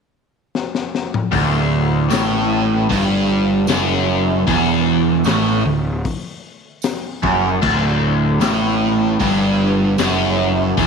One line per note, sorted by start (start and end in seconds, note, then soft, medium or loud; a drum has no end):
0.55 snare medium
0.75 snare medium
0.95 snare medium
1.14 mid tom medium
1.31 2.07 D1 medium
1.31 2.09 D2 loud
1.31 kick loud
1.31 open hi-hat medium
2.10 2.86 A1 medium
2.10 2.88 A2 loud
2.10 snare loud
2.10 open hi-hat medium
2.10 tambourine medium
2.89 3.65 G1 medium
2.89 3.67 G2 loud
2.89 kick loud
2.89 open hi-hat medium
3.67 4.44 F#1 loud
3.67 4.46 F#2 loud
3.67 snare loud
3.67 open hi-hat medium
3.67 tambourine medium
4.47 5.22 E1 loud
4.47 5.25 E2 loud
4.47 kick loud
4.47 open hi-hat medium
5.24 5.63 A1 medium
5.24 5.64 A2 loud
5.24 snare loud
5.24 open hi-hat medium
5.24 tambourine medium
5.64 6.02 D1 medium
5.64 5.97 D2 medium
6.05 kick loud
6.05 open hi-hat medium
6.82 snare loud
6.82 open hi-hat medium
6.82 tambourine medium
7.23 7.60 F#1 medium
7.23 7.61 F#2 loud
7.23 kick loud
7.61 8.38 D1 loud
7.61 8.40 D2 loud
7.61 kick loud
7.61 crash loud
8.40 9.16 A1 medium
8.40 9.18 A2 loud
8.40 snare loud
8.40 open hi-hat medium
8.40 tambourine medium
9.20 9.95 G1 medium
9.20 9.97 G2 loud
9.20 kick loud
9.20 open hi-hat medium
9.98 10.73 F#1 loud
9.98 10.76 F#2 loud
9.98 snare loud
9.98 open hi-hat medium
9.98 tambourine medium
10.77 10.87 E1 loud
10.77 10.87 E2 loud
10.77 kick loud
10.77 open hi-hat medium